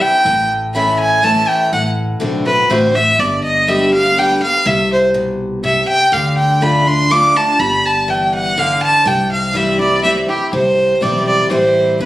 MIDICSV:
0, 0, Header, 1, 4, 480
1, 0, Start_track
1, 0, Key_signature, 0, "major"
1, 0, Tempo, 489396
1, 257, Time_signature, 3, 2, 24, 8
1, 11823, End_track
2, 0, Start_track
2, 0, Title_t, "Fiddle"
2, 0, Program_c, 0, 110
2, 15, Note_on_c, 0, 79, 109
2, 496, Note_off_c, 0, 79, 0
2, 730, Note_on_c, 0, 83, 81
2, 956, Note_off_c, 0, 83, 0
2, 976, Note_on_c, 0, 80, 104
2, 1212, Note_on_c, 0, 81, 111
2, 1227, Note_off_c, 0, 80, 0
2, 1452, Note_on_c, 0, 79, 98
2, 1467, Note_off_c, 0, 81, 0
2, 1687, Note_off_c, 0, 79, 0
2, 1693, Note_on_c, 0, 78, 99
2, 1838, Note_off_c, 0, 78, 0
2, 2410, Note_on_c, 0, 71, 103
2, 2650, Note_on_c, 0, 72, 94
2, 2664, Note_off_c, 0, 71, 0
2, 2897, Note_on_c, 0, 76, 121
2, 2912, Note_off_c, 0, 72, 0
2, 3134, Note_on_c, 0, 74, 97
2, 3149, Note_off_c, 0, 76, 0
2, 3368, Note_off_c, 0, 74, 0
2, 3374, Note_on_c, 0, 75, 89
2, 3615, Note_on_c, 0, 76, 82
2, 3629, Note_off_c, 0, 75, 0
2, 3855, Note_off_c, 0, 76, 0
2, 3861, Note_on_c, 0, 77, 108
2, 4103, Note_on_c, 0, 79, 105
2, 4118, Note_off_c, 0, 77, 0
2, 4333, Note_off_c, 0, 79, 0
2, 4339, Note_on_c, 0, 77, 107
2, 4578, Note_on_c, 0, 76, 97
2, 4592, Note_off_c, 0, 77, 0
2, 4816, Note_off_c, 0, 76, 0
2, 4826, Note_on_c, 0, 72, 99
2, 4966, Note_off_c, 0, 72, 0
2, 5534, Note_on_c, 0, 76, 93
2, 5757, Note_off_c, 0, 76, 0
2, 5771, Note_on_c, 0, 79, 125
2, 6012, Note_on_c, 0, 77, 104
2, 6027, Note_off_c, 0, 79, 0
2, 6243, Note_off_c, 0, 77, 0
2, 6249, Note_on_c, 0, 79, 94
2, 6496, Note_on_c, 0, 83, 96
2, 6511, Note_off_c, 0, 79, 0
2, 6741, Note_on_c, 0, 84, 110
2, 6756, Note_off_c, 0, 83, 0
2, 6975, Note_on_c, 0, 86, 123
2, 6990, Note_off_c, 0, 84, 0
2, 7222, Note_on_c, 0, 81, 114
2, 7237, Note_off_c, 0, 86, 0
2, 7450, Note_on_c, 0, 83, 113
2, 7464, Note_off_c, 0, 81, 0
2, 7704, Note_on_c, 0, 81, 96
2, 7719, Note_off_c, 0, 83, 0
2, 7939, Note_on_c, 0, 79, 77
2, 7954, Note_off_c, 0, 81, 0
2, 8176, Note_off_c, 0, 79, 0
2, 8185, Note_on_c, 0, 78, 105
2, 8420, Note_on_c, 0, 77, 100
2, 8435, Note_off_c, 0, 78, 0
2, 8653, Note_off_c, 0, 77, 0
2, 8659, Note_on_c, 0, 81, 123
2, 8901, Note_on_c, 0, 79, 105
2, 8916, Note_off_c, 0, 81, 0
2, 9131, Note_off_c, 0, 79, 0
2, 9137, Note_on_c, 0, 77, 89
2, 9383, Note_on_c, 0, 76, 86
2, 9398, Note_off_c, 0, 77, 0
2, 9607, Note_off_c, 0, 76, 0
2, 9613, Note_on_c, 0, 74, 100
2, 9833, Note_off_c, 0, 74, 0
2, 9839, Note_on_c, 0, 76, 93
2, 9987, Note_off_c, 0, 76, 0
2, 10091, Note_on_c, 0, 67, 84
2, 10315, Note_off_c, 0, 67, 0
2, 10333, Note_on_c, 0, 72, 87
2, 10813, Note_on_c, 0, 74, 82
2, 10828, Note_off_c, 0, 72, 0
2, 11054, Note_off_c, 0, 74, 0
2, 11059, Note_on_c, 0, 74, 91
2, 11279, Note_off_c, 0, 74, 0
2, 11297, Note_on_c, 0, 72, 93
2, 11743, Note_off_c, 0, 72, 0
2, 11781, Note_on_c, 0, 71, 87
2, 11823, Note_off_c, 0, 71, 0
2, 11823, End_track
3, 0, Start_track
3, 0, Title_t, "Steel-string acoustic guitar"
3, 0, Program_c, 1, 25
3, 0, Note_on_c, 1, 64, 66
3, 20, Note_on_c, 1, 60, 51
3, 238, Note_off_c, 1, 64, 0
3, 249, Note_off_c, 1, 60, 0
3, 253, Note_on_c, 1, 45, 93
3, 732, Note_on_c, 1, 52, 79
3, 741, Note_on_c, 1, 57, 93
3, 744, Note_on_c, 1, 61, 79
3, 752, Note_on_c, 1, 64, 90
3, 1166, Note_off_c, 1, 45, 0
3, 1190, Note_off_c, 1, 52, 0
3, 1194, Note_off_c, 1, 57, 0
3, 1196, Note_off_c, 1, 61, 0
3, 1200, Note_off_c, 1, 64, 0
3, 1205, Note_on_c, 1, 52, 95
3, 1209, Note_on_c, 1, 57, 98
3, 1220, Note_on_c, 1, 61, 93
3, 1229, Note_on_c, 1, 64, 101
3, 1666, Note_off_c, 1, 52, 0
3, 1668, Note_off_c, 1, 57, 0
3, 1674, Note_off_c, 1, 61, 0
3, 1678, Note_off_c, 1, 64, 0
3, 1694, Note_on_c, 1, 45, 93
3, 2156, Note_on_c, 1, 50, 87
3, 2167, Note_on_c, 1, 57, 84
3, 2171, Note_on_c, 1, 60, 96
3, 2175, Note_on_c, 1, 66, 86
3, 2396, Note_off_c, 1, 50, 0
3, 2397, Note_off_c, 1, 66, 0
3, 2402, Note_off_c, 1, 57, 0
3, 2403, Note_off_c, 1, 60, 0
3, 2409, Note_on_c, 1, 66, 62
3, 2429, Note_on_c, 1, 60, 52
3, 2606, Note_off_c, 1, 45, 0
3, 2642, Note_off_c, 1, 66, 0
3, 2645, Note_on_c, 1, 50, 89
3, 2648, Note_off_c, 1, 60, 0
3, 2652, Note_on_c, 1, 57, 98
3, 2660, Note_on_c, 1, 60, 93
3, 2669, Note_on_c, 1, 66, 102
3, 2877, Note_off_c, 1, 66, 0
3, 2880, Note_off_c, 1, 50, 0
3, 2884, Note_off_c, 1, 57, 0
3, 2888, Note_off_c, 1, 60, 0
3, 2889, Note_on_c, 1, 66, 59
3, 2910, Note_on_c, 1, 60, 53
3, 3122, Note_off_c, 1, 66, 0
3, 3132, Note_off_c, 1, 60, 0
3, 3133, Note_on_c, 1, 43, 91
3, 3603, Note_on_c, 1, 50, 81
3, 3612, Note_on_c, 1, 55, 90
3, 3619, Note_on_c, 1, 59, 82
3, 3624, Note_on_c, 1, 67, 95
3, 3839, Note_off_c, 1, 50, 0
3, 3839, Note_off_c, 1, 67, 0
3, 3844, Note_off_c, 1, 55, 0
3, 3847, Note_off_c, 1, 59, 0
3, 3851, Note_on_c, 1, 67, 66
3, 3872, Note_on_c, 1, 59, 44
3, 4045, Note_off_c, 1, 43, 0
3, 4082, Note_off_c, 1, 67, 0
3, 4082, Note_on_c, 1, 50, 85
3, 4090, Note_off_c, 1, 59, 0
3, 4094, Note_on_c, 1, 55, 92
3, 4102, Note_on_c, 1, 59, 94
3, 4106, Note_on_c, 1, 67, 101
3, 4312, Note_off_c, 1, 67, 0
3, 4319, Note_off_c, 1, 50, 0
3, 4323, Note_on_c, 1, 67, 61
3, 4325, Note_off_c, 1, 55, 0
3, 4328, Note_off_c, 1, 59, 0
3, 4344, Note_on_c, 1, 59, 53
3, 4558, Note_off_c, 1, 67, 0
3, 4566, Note_on_c, 1, 48, 101
3, 4569, Note_off_c, 1, 59, 0
3, 5045, Note_on_c, 1, 47, 86
3, 5481, Note_off_c, 1, 48, 0
3, 5505, Note_off_c, 1, 47, 0
3, 5528, Note_on_c, 1, 48, 92
3, 5986, Note_off_c, 1, 48, 0
3, 6002, Note_on_c, 1, 50, 93
3, 6470, Note_off_c, 1, 50, 0
3, 6482, Note_on_c, 1, 50, 74
3, 6491, Note_on_c, 1, 57, 89
3, 6496, Note_on_c, 1, 62, 93
3, 6503, Note_on_c, 1, 65, 95
3, 6708, Note_off_c, 1, 65, 0
3, 6718, Note_off_c, 1, 50, 0
3, 6720, Note_on_c, 1, 65, 63
3, 6723, Note_off_c, 1, 57, 0
3, 6725, Note_off_c, 1, 62, 0
3, 6742, Note_on_c, 1, 62, 49
3, 6956, Note_off_c, 1, 65, 0
3, 6965, Note_on_c, 1, 50, 96
3, 6967, Note_off_c, 1, 62, 0
3, 6977, Note_on_c, 1, 57, 92
3, 6982, Note_on_c, 1, 62, 93
3, 6986, Note_on_c, 1, 65, 90
3, 7196, Note_off_c, 1, 65, 0
3, 7199, Note_off_c, 1, 50, 0
3, 7206, Note_off_c, 1, 57, 0
3, 7208, Note_off_c, 1, 62, 0
3, 7208, Note_on_c, 1, 65, 68
3, 7232, Note_on_c, 1, 62, 51
3, 7440, Note_off_c, 1, 65, 0
3, 7450, Note_on_c, 1, 55, 87
3, 7452, Note_off_c, 1, 62, 0
3, 7925, Note_on_c, 1, 52, 90
3, 8363, Note_off_c, 1, 55, 0
3, 8384, Note_off_c, 1, 52, 0
3, 8410, Note_on_c, 1, 50, 91
3, 8867, Note_off_c, 1, 50, 0
3, 8880, Note_on_c, 1, 48, 96
3, 9349, Note_on_c, 1, 52, 86
3, 9359, Note_on_c, 1, 55, 81
3, 9366, Note_on_c, 1, 60, 90
3, 9368, Note_on_c, 1, 64, 85
3, 9591, Note_off_c, 1, 64, 0
3, 9592, Note_off_c, 1, 52, 0
3, 9596, Note_off_c, 1, 55, 0
3, 9600, Note_off_c, 1, 60, 0
3, 9603, Note_on_c, 1, 64, 68
3, 9624, Note_on_c, 1, 60, 53
3, 9798, Note_off_c, 1, 48, 0
3, 9838, Note_off_c, 1, 64, 0
3, 9840, Note_on_c, 1, 52, 84
3, 9846, Note_off_c, 1, 60, 0
3, 9853, Note_on_c, 1, 55, 92
3, 9858, Note_on_c, 1, 60, 93
3, 9867, Note_on_c, 1, 64, 90
3, 10077, Note_off_c, 1, 52, 0
3, 10077, Note_off_c, 1, 64, 0
3, 10084, Note_off_c, 1, 55, 0
3, 10086, Note_off_c, 1, 60, 0
3, 10089, Note_on_c, 1, 64, 62
3, 10108, Note_on_c, 1, 60, 52
3, 10321, Note_off_c, 1, 64, 0
3, 10327, Note_on_c, 1, 48, 92
3, 10330, Note_off_c, 1, 60, 0
3, 10797, Note_on_c, 1, 52, 73
3, 10809, Note_on_c, 1, 55, 86
3, 10815, Note_on_c, 1, 60, 91
3, 10823, Note_on_c, 1, 64, 86
3, 11243, Note_off_c, 1, 48, 0
3, 11261, Note_off_c, 1, 52, 0
3, 11267, Note_off_c, 1, 55, 0
3, 11270, Note_off_c, 1, 60, 0
3, 11274, Note_off_c, 1, 64, 0
3, 11279, Note_on_c, 1, 52, 83
3, 11288, Note_on_c, 1, 55, 97
3, 11293, Note_on_c, 1, 60, 94
3, 11302, Note_on_c, 1, 64, 91
3, 11743, Note_off_c, 1, 52, 0
3, 11747, Note_off_c, 1, 55, 0
3, 11750, Note_off_c, 1, 60, 0
3, 11754, Note_off_c, 1, 64, 0
3, 11775, Note_on_c, 1, 43, 92
3, 11823, Note_off_c, 1, 43, 0
3, 11823, End_track
4, 0, Start_track
4, 0, Title_t, "Upright bass"
4, 0, Program_c, 2, 32
4, 245, Note_on_c, 2, 33, 92
4, 1383, Note_off_c, 2, 33, 0
4, 1689, Note_on_c, 2, 33, 87
4, 2069, Note_off_c, 2, 33, 0
4, 2169, Note_on_c, 2, 35, 87
4, 2579, Note_off_c, 2, 35, 0
4, 2647, Note_on_c, 2, 33, 77
4, 3058, Note_off_c, 2, 33, 0
4, 3125, Note_on_c, 2, 31, 92
4, 4262, Note_off_c, 2, 31, 0
4, 4568, Note_on_c, 2, 36, 97
4, 5705, Note_off_c, 2, 36, 0
4, 6009, Note_on_c, 2, 38, 85
4, 7145, Note_off_c, 2, 38, 0
4, 7448, Note_on_c, 2, 31, 89
4, 8584, Note_off_c, 2, 31, 0
4, 8886, Note_on_c, 2, 36, 97
4, 10024, Note_off_c, 2, 36, 0
4, 10325, Note_on_c, 2, 36, 87
4, 10707, Note_off_c, 2, 36, 0
4, 10806, Note_on_c, 2, 35, 79
4, 11217, Note_off_c, 2, 35, 0
4, 11289, Note_on_c, 2, 33, 77
4, 11699, Note_off_c, 2, 33, 0
4, 11767, Note_on_c, 2, 31, 80
4, 11823, Note_off_c, 2, 31, 0
4, 11823, End_track
0, 0, End_of_file